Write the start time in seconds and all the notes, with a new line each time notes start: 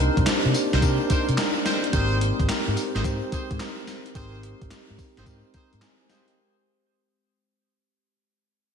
Already playing: A#3 C4 D4 D#4 G4 A#4 C5 D5
0.17 C2, kick, closed hi-hat
0.26 D4 D#4 G4 C5, snare, clap, closed hi-hat, tambourine
0.45 C3
0.54 open hi-hat, tambourine
0.73 C2 D#4 A#4 C5, snare, closed hi-hat
0.82 C3 D4 D#4 G4 A#4, kick, closed hi-hat, tambourine
1.10 D#4 A#4 C5, muted fingered electric bass stroke, kick, closed hi-hat, tambourine
1.29 C3, closed hi-hat
1.37 D4 D#4 G4 A#4, snare, clap, closed hi-hat, tambourine
1.65 D#4 A#4 C5, snare, open hi-hat, tambourine
1.84 closed hi-hat
1.93 G#1 G#3 C4 D#4 G4 G#4 A#4 C5, kick, closed hi-hat, tambourine
2.21 closed hi-hat
2.40 G#1, kick, closed hi-hat
2.48 C4 D#4 G4 A#4, muted fingered electric bass stroke, snare, clap, closed hi-hat, tambourine
2.68 G#2
2.77 open hi-hat, tambourine
2.95 G#1 G4 G#4 C5, snare, closed hi-hat
3.04 G#2 C4 D#4 G4 C5, kick, closed hi-hat, tambourine
3.32 G4 G#4 C5, muted fingered electric bass stroke, kick, closed hi-hat, tambourine
3.51 G#2, kick, closed hi-hat
3.60 C4 D#4 G4 A#4, snare, clap, closed hi-hat, tambourine
3.87 snare, open hi-hat, tambourine
4.06 closed hi-hat
4.15 G#1 C4 D#4 G4 G#4 A#4 C5, kick, closed hi-hat, tambourine
4.43 closed hi-hat
4.62 G#1, kick, closed hi-hat
4.71 C4 D#4 G4 C5, snare, clap, closed hi-hat, tambourine
4.90 G#2
4.99 kick, open hi-hat, tambourine
5.17 G#1 G4 G#4 C5, snare, closed hi-hat
5.26 G#2 C4 D#4 G4 A#4, kick, closed hi-hat, tambourine
5.54 G4 G#4 C5 A#5, muted fingered electric bass stroke, kick, closed hi-hat, tambourine
5.73 G#2, closed hi-hat
5.82 G#5, snare, clap, closed hi-hat, tambourine
6.01 C5 G#5
6.09 G4 G#4 C5 D#5 F5, snare, open hi-hat, tambourine
6.28 A#4 G5, closed hi-hat